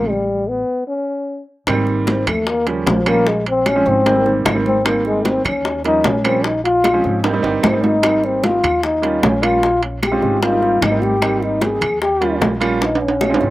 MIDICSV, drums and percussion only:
0, 0, Header, 1, 2, 480
1, 0, Start_track
1, 0, Key_signature, -4, "major"
1, 0, Tempo, 397878
1, 101, Time_signature, 4, 2, 24, 8
1, 16288, End_track
2, 0, Start_track
2, 0, Title_t, "Drums"
2, 2015, Note_on_c, 9, 60, 71
2, 2023, Note_on_c, 9, 75, 73
2, 2025, Note_on_c, 9, 65, 94
2, 2028, Note_on_c, 9, 63, 33
2, 2135, Note_off_c, 9, 60, 0
2, 2143, Note_off_c, 9, 75, 0
2, 2145, Note_off_c, 9, 65, 0
2, 2149, Note_off_c, 9, 63, 0
2, 2252, Note_on_c, 9, 60, 37
2, 2269, Note_on_c, 9, 63, 33
2, 2373, Note_off_c, 9, 60, 0
2, 2390, Note_off_c, 9, 63, 0
2, 2497, Note_on_c, 9, 60, 64
2, 2505, Note_on_c, 9, 63, 94
2, 2505, Note_on_c, 9, 65, 65
2, 2505, Note_on_c, 9, 66, 58
2, 2618, Note_off_c, 9, 60, 0
2, 2625, Note_off_c, 9, 63, 0
2, 2626, Note_off_c, 9, 65, 0
2, 2626, Note_off_c, 9, 66, 0
2, 2736, Note_on_c, 9, 60, 36
2, 2738, Note_on_c, 9, 64, 90
2, 2740, Note_on_c, 9, 65, 107
2, 2746, Note_on_c, 9, 75, 71
2, 2856, Note_off_c, 9, 60, 0
2, 2859, Note_off_c, 9, 64, 0
2, 2861, Note_off_c, 9, 65, 0
2, 2866, Note_off_c, 9, 75, 0
2, 2976, Note_on_c, 9, 60, 64
2, 2984, Note_on_c, 9, 63, 36
2, 3097, Note_off_c, 9, 60, 0
2, 3105, Note_off_c, 9, 63, 0
2, 3217, Note_on_c, 9, 65, 75
2, 3221, Note_on_c, 9, 60, 33
2, 3224, Note_on_c, 9, 63, 32
2, 3338, Note_off_c, 9, 65, 0
2, 3342, Note_off_c, 9, 60, 0
2, 3345, Note_off_c, 9, 63, 0
2, 3457, Note_on_c, 9, 65, 66
2, 3457, Note_on_c, 9, 66, 78
2, 3464, Note_on_c, 9, 60, 78
2, 3464, Note_on_c, 9, 61, 94
2, 3471, Note_on_c, 9, 63, 92
2, 3578, Note_off_c, 9, 65, 0
2, 3578, Note_off_c, 9, 66, 0
2, 3585, Note_off_c, 9, 60, 0
2, 3585, Note_off_c, 9, 61, 0
2, 3591, Note_off_c, 9, 63, 0
2, 3695, Note_on_c, 9, 65, 105
2, 3700, Note_on_c, 9, 75, 72
2, 3710, Note_on_c, 9, 63, 70
2, 3816, Note_off_c, 9, 65, 0
2, 3821, Note_off_c, 9, 75, 0
2, 3830, Note_off_c, 9, 63, 0
2, 3940, Note_on_c, 9, 60, 63
2, 3948, Note_on_c, 9, 63, 36
2, 4060, Note_off_c, 9, 60, 0
2, 4069, Note_off_c, 9, 63, 0
2, 4180, Note_on_c, 9, 65, 75
2, 4185, Note_on_c, 9, 63, 35
2, 4300, Note_off_c, 9, 65, 0
2, 4306, Note_off_c, 9, 63, 0
2, 4414, Note_on_c, 9, 75, 64
2, 4415, Note_on_c, 9, 65, 87
2, 4415, Note_on_c, 9, 66, 56
2, 4416, Note_on_c, 9, 60, 61
2, 4422, Note_on_c, 9, 63, 68
2, 4535, Note_off_c, 9, 75, 0
2, 4536, Note_off_c, 9, 65, 0
2, 4536, Note_off_c, 9, 66, 0
2, 4537, Note_off_c, 9, 60, 0
2, 4542, Note_off_c, 9, 63, 0
2, 4658, Note_on_c, 9, 63, 36
2, 4662, Note_on_c, 9, 60, 39
2, 4778, Note_off_c, 9, 63, 0
2, 4783, Note_off_c, 9, 60, 0
2, 4893, Note_on_c, 9, 63, 34
2, 4900, Note_on_c, 9, 65, 71
2, 4904, Note_on_c, 9, 60, 65
2, 5014, Note_off_c, 9, 63, 0
2, 5020, Note_off_c, 9, 65, 0
2, 5024, Note_off_c, 9, 60, 0
2, 5138, Note_on_c, 9, 60, 33
2, 5140, Note_on_c, 9, 63, 35
2, 5259, Note_off_c, 9, 60, 0
2, 5261, Note_off_c, 9, 63, 0
2, 5375, Note_on_c, 9, 65, 80
2, 5375, Note_on_c, 9, 66, 83
2, 5377, Note_on_c, 9, 63, 86
2, 5378, Note_on_c, 9, 75, 74
2, 5379, Note_on_c, 9, 60, 78
2, 5379, Note_on_c, 9, 61, 86
2, 5496, Note_off_c, 9, 65, 0
2, 5496, Note_off_c, 9, 66, 0
2, 5497, Note_off_c, 9, 63, 0
2, 5499, Note_off_c, 9, 75, 0
2, 5500, Note_off_c, 9, 60, 0
2, 5500, Note_off_c, 9, 61, 0
2, 5619, Note_on_c, 9, 60, 38
2, 5621, Note_on_c, 9, 63, 82
2, 5739, Note_off_c, 9, 60, 0
2, 5742, Note_off_c, 9, 63, 0
2, 5858, Note_on_c, 9, 65, 93
2, 5860, Note_on_c, 9, 60, 75
2, 5860, Note_on_c, 9, 75, 65
2, 5864, Note_on_c, 9, 63, 35
2, 5979, Note_off_c, 9, 65, 0
2, 5980, Note_off_c, 9, 60, 0
2, 5981, Note_off_c, 9, 75, 0
2, 5984, Note_off_c, 9, 63, 0
2, 6091, Note_on_c, 9, 60, 35
2, 6102, Note_on_c, 9, 63, 33
2, 6212, Note_off_c, 9, 60, 0
2, 6222, Note_off_c, 9, 63, 0
2, 6333, Note_on_c, 9, 63, 102
2, 6337, Note_on_c, 9, 60, 61
2, 6340, Note_on_c, 9, 65, 68
2, 6340, Note_on_c, 9, 66, 57
2, 6454, Note_off_c, 9, 63, 0
2, 6458, Note_off_c, 9, 60, 0
2, 6461, Note_off_c, 9, 65, 0
2, 6461, Note_off_c, 9, 66, 0
2, 6571, Note_on_c, 9, 60, 35
2, 6571, Note_on_c, 9, 64, 96
2, 6579, Note_on_c, 9, 75, 75
2, 6583, Note_on_c, 9, 65, 94
2, 6692, Note_off_c, 9, 60, 0
2, 6692, Note_off_c, 9, 64, 0
2, 6699, Note_off_c, 9, 75, 0
2, 6704, Note_off_c, 9, 65, 0
2, 6816, Note_on_c, 9, 60, 68
2, 6817, Note_on_c, 9, 63, 38
2, 6937, Note_off_c, 9, 60, 0
2, 6937, Note_off_c, 9, 63, 0
2, 7051, Note_on_c, 9, 60, 37
2, 7059, Note_on_c, 9, 63, 36
2, 7063, Note_on_c, 9, 65, 67
2, 7172, Note_off_c, 9, 60, 0
2, 7180, Note_off_c, 9, 63, 0
2, 7183, Note_off_c, 9, 65, 0
2, 7291, Note_on_c, 9, 60, 77
2, 7291, Note_on_c, 9, 61, 86
2, 7293, Note_on_c, 9, 63, 84
2, 7303, Note_on_c, 9, 65, 63
2, 7303, Note_on_c, 9, 66, 82
2, 7412, Note_off_c, 9, 60, 0
2, 7412, Note_off_c, 9, 61, 0
2, 7414, Note_off_c, 9, 63, 0
2, 7424, Note_off_c, 9, 65, 0
2, 7424, Note_off_c, 9, 66, 0
2, 7534, Note_on_c, 9, 75, 75
2, 7538, Note_on_c, 9, 65, 98
2, 7654, Note_off_c, 9, 75, 0
2, 7659, Note_off_c, 9, 65, 0
2, 7773, Note_on_c, 9, 60, 72
2, 7894, Note_off_c, 9, 60, 0
2, 8020, Note_on_c, 9, 63, 33
2, 8028, Note_on_c, 9, 65, 73
2, 8140, Note_off_c, 9, 63, 0
2, 8148, Note_off_c, 9, 65, 0
2, 8252, Note_on_c, 9, 75, 61
2, 8254, Note_on_c, 9, 63, 63
2, 8255, Note_on_c, 9, 60, 62
2, 8265, Note_on_c, 9, 65, 84
2, 8265, Note_on_c, 9, 66, 61
2, 8372, Note_off_c, 9, 75, 0
2, 8374, Note_off_c, 9, 63, 0
2, 8376, Note_off_c, 9, 60, 0
2, 8385, Note_off_c, 9, 65, 0
2, 8385, Note_off_c, 9, 66, 0
2, 8489, Note_on_c, 9, 63, 36
2, 8493, Note_on_c, 9, 60, 35
2, 8610, Note_off_c, 9, 63, 0
2, 8614, Note_off_c, 9, 60, 0
2, 8729, Note_on_c, 9, 63, 34
2, 8735, Note_on_c, 9, 60, 64
2, 8736, Note_on_c, 9, 65, 100
2, 8850, Note_off_c, 9, 63, 0
2, 8855, Note_off_c, 9, 60, 0
2, 8857, Note_off_c, 9, 65, 0
2, 8964, Note_on_c, 9, 63, 34
2, 8975, Note_on_c, 9, 65, 85
2, 8977, Note_on_c, 9, 60, 34
2, 9085, Note_off_c, 9, 63, 0
2, 9095, Note_off_c, 9, 65, 0
2, 9097, Note_off_c, 9, 60, 0
2, 9208, Note_on_c, 9, 75, 70
2, 9210, Note_on_c, 9, 63, 91
2, 9210, Note_on_c, 9, 66, 91
2, 9213, Note_on_c, 9, 60, 76
2, 9213, Note_on_c, 9, 61, 92
2, 9329, Note_off_c, 9, 75, 0
2, 9331, Note_off_c, 9, 63, 0
2, 9331, Note_off_c, 9, 66, 0
2, 9334, Note_off_c, 9, 60, 0
2, 9334, Note_off_c, 9, 61, 0
2, 9452, Note_on_c, 9, 60, 35
2, 9456, Note_on_c, 9, 66, 74
2, 9457, Note_on_c, 9, 63, 81
2, 9572, Note_off_c, 9, 60, 0
2, 9576, Note_off_c, 9, 66, 0
2, 9577, Note_off_c, 9, 63, 0
2, 9689, Note_on_c, 9, 65, 96
2, 9693, Note_on_c, 9, 60, 72
2, 9695, Note_on_c, 9, 75, 66
2, 9810, Note_off_c, 9, 65, 0
2, 9814, Note_off_c, 9, 60, 0
2, 9816, Note_off_c, 9, 75, 0
2, 9935, Note_on_c, 9, 60, 35
2, 9940, Note_on_c, 9, 63, 34
2, 10056, Note_off_c, 9, 60, 0
2, 10060, Note_off_c, 9, 63, 0
2, 10176, Note_on_c, 9, 60, 58
2, 10178, Note_on_c, 9, 65, 64
2, 10178, Note_on_c, 9, 66, 55
2, 10181, Note_on_c, 9, 63, 107
2, 10296, Note_off_c, 9, 60, 0
2, 10299, Note_off_c, 9, 65, 0
2, 10299, Note_off_c, 9, 66, 0
2, 10302, Note_off_c, 9, 63, 0
2, 10418, Note_on_c, 9, 60, 36
2, 10419, Note_on_c, 9, 75, 64
2, 10423, Note_on_c, 9, 64, 87
2, 10425, Note_on_c, 9, 65, 100
2, 10539, Note_off_c, 9, 60, 0
2, 10540, Note_off_c, 9, 75, 0
2, 10543, Note_off_c, 9, 64, 0
2, 10545, Note_off_c, 9, 65, 0
2, 10658, Note_on_c, 9, 60, 61
2, 10664, Note_on_c, 9, 63, 36
2, 10779, Note_off_c, 9, 60, 0
2, 10785, Note_off_c, 9, 63, 0
2, 10898, Note_on_c, 9, 65, 72
2, 10906, Note_on_c, 9, 63, 36
2, 10909, Note_on_c, 9, 60, 34
2, 11019, Note_off_c, 9, 65, 0
2, 11027, Note_off_c, 9, 63, 0
2, 11030, Note_off_c, 9, 60, 0
2, 11137, Note_on_c, 9, 65, 66
2, 11137, Note_on_c, 9, 66, 87
2, 11138, Note_on_c, 9, 60, 75
2, 11138, Note_on_c, 9, 61, 91
2, 11140, Note_on_c, 9, 63, 91
2, 11258, Note_off_c, 9, 65, 0
2, 11258, Note_off_c, 9, 66, 0
2, 11259, Note_off_c, 9, 60, 0
2, 11259, Note_off_c, 9, 61, 0
2, 11261, Note_off_c, 9, 63, 0
2, 11376, Note_on_c, 9, 75, 72
2, 11378, Note_on_c, 9, 63, 64
2, 11379, Note_on_c, 9, 65, 102
2, 11497, Note_off_c, 9, 75, 0
2, 11499, Note_off_c, 9, 63, 0
2, 11499, Note_off_c, 9, 65, 0
2, 11617, Note_on_c, 9, 63, 33
2, 11620, Note_on_c, 9, 60, 67
2, 11738, Note_off_c, 9, 63, 0
2, 11741, Note_off_c, 9, 60, 0
2, 11854, Note_on_c, 9, 65, 75
2, 11860, Note_on_c, 9, 63, 33
2, 11974, Note_off_c, 9, 65, 0
2, 11981, Note_off_c, 9, 63, 0
2, 12095, Note_on_c, 9, 75, 64
2, 12096, Note_on_c, 9, 63, 64
2, 12098, Note_on_c, 9, 60, 62
2, 12102, Note_on_c, 9, 65, 85
2, 12102, Note_on_c, 9, 66, 58
2, 12216, Note_off_c, 9, 75, 0
2, 12217, Note_off_c, 9, 63, 0
2, 12219, Note_off_c, 9, 60, 0
2, 12222, Note_off_c, 9, 65, 0
2, 12222, Note_off_c, 9, 66, 0
2, 12334, Note_on_c, 9, 60, 36
2, 12337, Note_on_c, 9, 63, 36
2, 12454, Note_off_c, 9, 60, 0
2, 12457, Note_off_c, 9, 63, 0
2, 12576, Note_on_c, 9, 63, 35
2, 12577, Note_on_c, 9, 60, 69
2, 12584, Note_on_c, 9, 65, 69
2, 12696, Note_off_c, 9, 63, 0
2, 12698, Note_off_c, 9, 60, 0
2, 12705, Note_off_c, 9, 65, 0
2, 12819, Note_on_c, 9, 60, 37
2, 12821, Note_on_c, 9, 63, 33
2, 12939, Note_off_c, 9, 60, 0
2, 12942, Note_off_c, 9, 63, 0
2, 13055, Note_on_c, 9, 75, 73
2, 13058, Note_on_c, 9, 65, 85
2, 13058, Note_on_c, 9, 66, 75
2, 13059, Note_on_c, 9, 60, 77
2, 13059, Note_on_c, 9, 61, 94
2, 13059, Note_on_c, 9, 63, 87
2, 13176, Note_off_c, 9, 75, 0
2, 13179, Note_off_c, 9, 60, 0
2, 13179, Note_off_c, 9, 61, 0
2, 13179, Note_off_c, 9, 65, 0
2, 13179, Note_off_c, 9, 66, 0
2, 13180, Note_off_c, 9, 63, 0
2, 13292, Note_on_c, 9, 63, 79
2, 13306, Note_on_c, 9, 60, 36
2, 13413, Note_off_c, 9, 63, 0
2, 13427, Note_off_c, 9, 60, 0
2, 13533, Note_on_c, 9, 75, 67
2, 13537, Note_on_c, 9, 63, 33
2, 13537, Note_on_c, 9, 65, 90
2, 13539, Note_on_c, 9, 60, 71
2, 13654, Note_off_c, 9, 75, 0
2, 13658, Note_off_c, 9, 63, 0
2, 13658, Note_off_c, 9, 65, 0
2, 13660, Note_off_c, 9, 60, 0
2, 13771, Note_on_c, 9, 63, 37
2, 13783, Note_on_c, 9, 60, 37
2, 13892, Note_off_c, 9, 63, 0
2, 13903, Note_off_c, 9, 60, 0
2, 14011, Note_on_c, 9, 63, 97
2, 14015, Note_on_c, 9, 60, 66
2, 14020, Note_on_c, 9, 65, 67
2, 14020, Note_on_c, 9, 66, 57
2, 14131, Note_off_c, 9, 63, 0
2, 14135, Note_off_c, 9, 60, 0
2, 14140, Note_off_c, 9, 65, 0
2, 14140, Note_off_c, 9, 66, 0
2, 14252, Note_on_c, 9, 60, 37
2, 14252, Note_on_c, 9, 64, 94
2, 14258, Note_on_c, 9, 65, 103
2, 14259, Note_on_c, 9, 75, 70
2, 14372, Note_off_c, 9, 64, 0
2, 14373, Note_off_c, 9, 60, 0
2, 14379, Note_off_c, 9, 65, 0
2, 14380, Note_off_c, 9, 75, 0
2, 14492, Note_on_c, 9, 63, 35
2, 14498, Note_on_c, 9, 60, 62
2, 14613, Note_off_c, 9, 63, 0
2, 14618, Note_off_c, 9, 60, 0
2, 14737, Note_on_c, 9, 63, 38
2, 14739, Note_on_c, 9, 65, 70
2, 14743, Note_on_c, 9, 60, 37
2, 14857, Note_off_c, 9, 63, 0
2, 14859, Note_off_c, 9, 65, 0
2, 14864, Note_off_c, 9, 60, 0
2, 14977, Note_on_c, 9, 65, 62
2, 14977, Note_on_c, 9, 66, 83
2, 14981, Note_on_c, 9, 60, 75
2, 14981, Note_on_c, 9, 61, 89
2, 14981, Note_on_c, 9, 63, 84
2, 15098, Note_off_c, 9, 65, 0
2, 15098, Note_off_c, 9, 66, 0
2, 15102, Note_off_c, 9, 60, 0
2, 15102, Note_off_c, 9, 61, 0
2, 15102, Note_off_c, 9, 63, 0
2, 15219, Note_on_c, 9, 63, 74
2, 15219, Note_on_c, 9, 65, 92
2, 15219, Note_on_c, 9, 75, 72
2, 15339, Note_off_c, 9, 75, 0
2, 15340, Note_off_c, 9, 63, 0
2, 15340, Note_off_c, 9, 65, 0
2, 15458, Note_on_c, 9, 65, 74
2, 15460, Note_on_c, 9, 63, 32
2, 15464, Note_on_c, 9, 60, 70
2, 15579, Note_off_c, 9, 65, 0
2, 15581, Note_off_c, 9, 63, 0
2, 15584, Note_off_c, 9, 60, 0
2, 15626, Note_on_c, 9, 65, 89
2, 15695, Note_on_c, 9, 63, 34
2, 15747, Note_off_c, 9, 65, 0
2, 15785, Note_on_c, 9, 65, 99
2, 15816, Note_off_c, 9, 63, 0
2, 15905, Note_off_c, 9, 65, 0
2, 15935, Note_on_c, 9, 63, 63
2, 15936, Note_on_c, 9, 60, 64
2, 15937, Note_on_c, 9, 66, 79
2, 15937, Note_on_c, 9, 75, 61
2, 16056, Note_off_c, 9, 63, 0
2, 16057, Note_off_c, 9, 60, 0
2, 16057, Note_off_c, 9, 75, 0
2, 16058, Note_off_c, 9, 66, 0
2, 16096, Note_on_c, 9, 65, 91
2, 16175, Note_on_c, 9, 60, 35
2, 16178, Note_on_c, 9, 63, 38
2, 16217, Note_off_c, 9, 65, 0
2, 16288, Note_off_c, 9, 60, 0
2, 16288, Note_off_c, 9, 63, 0
2, 16288, End_track
0, 0, End_of_file